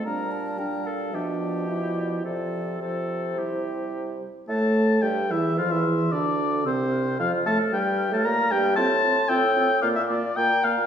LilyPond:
<<
  \new Staff \with { instrumentName = "Flute" } { \time 4/4 \key f \major \tempo 4 = 111 bes''8 a''8 g''8 f''8 e''8 d''8 e''8 d''8 | d''4 c''2~ c''8 r8 | r2 c'''4 d'''4 | e'''8 f'''2.~ f'''8 |
c'''4 e'''4 d'''4 bes''4 | }
  \new Staff \with { instrumentName = "Oboe" } { \time 4/4 \key f \major bes'4 bes'8 a'8 g'2 | a'4 a'4 g'4. r8 | a''4 g''8 e''8 f''16 e''8. d''4 | c''4 f''8 a''8 g''8. a''16 bes''8 g''8 |
a''4 g''4 f''16 e''16 d''8 g''8 f''8 | }
  \new Staff \with { instrumentName = "Clarinet" } { \time 4/4 \key f \major d'4 d'4 d'4 e'4 | f'4 f'4 e'4. r8 | a'4 g'8 e'8 f'16 e'8. d'4 | c'4 f'8 a'8 g'8. a'16 bes'8 g'8 |
f'8 f'8 f'8 f'8 f'8 f'8 f'8 f'8 | }
  \new Staff \with { instrumentName = "French horn" } { \clef bass \time 4/4 \key f \major g4 g4 f2 | f4 f4 g4. r8 | a4 g8 e8 f16 e8. d4 | c4 f8 a8 g8. a16 bes8 g8 |
c'8 c'8 c'8 c'8 bes8 bes8 bes8 bes8 | }
  \new Staff \with { instrumentName = "Bassoon" } { \clef bass \time 4/4 \key f \major bes,2 b,2 | c2.~ c8 r8 | a,4 g,8 e,8 f,16 e,8. d,4 | c,4 f,8 a,8 g,8. a,16 bes,8 g,8 |
a,4 a,4 bes,4 bes,4 | }
>>